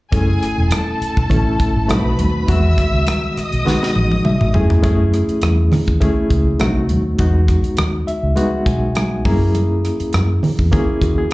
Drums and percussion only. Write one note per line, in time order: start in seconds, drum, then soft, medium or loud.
0.12 kick loud
0.12 closed hi-hat medium
0.12 muted conga soft
0.43 cross-stick soft
0.43 closed hi-hat medium
0.71 cross-stick loud
0.71 closed hi-hat medium
0.71 high conga medium
1.02 closed hi-hat medium
1.17 kick medium
1.30 kick medium
1.30 closed hi-hat medium
1.30 muted conga soft
1.30 low conga medium
1.60 kick medium
1.60 closed hi-hat medium
1.89 cross-stick loud
1.89 closed hi-hat medium
1.89 high conga medium
2.19 closed hi-hat medium
2.19 high conga medium
2.48 kick medium
2.48 closed hi-hat medium
2.48 muted conga soft
2.77 kick medium
2.77 cross-stick soft
2.77 closed hi-hat medium
2.77 muted conga soft
3.07 cross-stick loud
3.07 closed hi-hat medium
3.07 high conga medium
3.37 cross-stick soft
3.37 closed hi-hat medium
3.52 closed hi-hat soft
3.66 snare soft
3.66 muted conga soft
3.66 low conga medium
3.83 snare soft
3.95 high tom medium
4.11 high tom medium
4.25 mid tom medium
4.25 high conga medium
4.41 mid tom medium
4.54 floor tom medium
4.54 high conga medium
4.70 floor tom medium
4.83 kick loud
4.83 closed hi-hat medium
4.83 muted conga soft
5.13 cross-stick soft
5.13 closed hi-hat medium
5.29 closed hi-hat soft
5.42 cross-stick loud
5.42 closed hi-hat medium
5.42 high conga medium
5.72 cross-stick soft
5.72 open hi-hat soft
5.72 low conga medium
5.87 kick medium
5.87 closed hi-hat soft
6.01 kick medium
6.01 closed hi-hat medium
6.01 muted conga soft
6.01 low conga medium
6.30 kick medium
6.30 closed hi-hat medium
6.60 cross-stick loud
6.60 closed hi-hat medium
6.60 high conga medium
6.89 closed hi-hat medium
6.89 high conga medium
7.19 kick medium
7.19 closed hi-hat medium
7.19 muted conga soft
7.48 kick medium
7.48 cross-stick soft
7.48 closed hi-hat medium
7.64 closed hi-hat soft
7.77 cross-stick loud
7.77 closed hi-hat medium
7.77 high conga soft
8.08 closed hi-hat medium
8.36 closed hi-hat medium
8.36 muted conga soft
8.66 kick medium
8.66 closed hi-hat medium
8.95 cross-stick loud
8.95 closed hi-hat medium
8.95 high conga medium
9.25 kick medium
9.25 open hi-hat medium
9.25 high conga medium
9.55 closed hi-hat medium
9.55 muted conga soft
9.85 cross-stick soft
9.85 closed hi-hat medium
10.00 closed hi-hat soft
10.13 cross-stick loud
10.13 closed hi-hat medium
10.13 high conga medium
10.43 open hi-hat soft
10.43 low conga medium
10.59 kick medium
10.72 kick medium
10.72 closed hi-hat medium
10.72 muted conga soft
10.72 low conga medium
11.02 kick medium
11.02 closed hi-hat medium